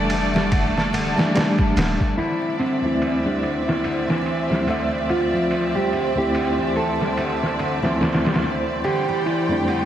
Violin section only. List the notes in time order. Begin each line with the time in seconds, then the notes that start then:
Already playing: A3 A4 D5
2.19 C4 D5 E5
8.86 G3 G4 G5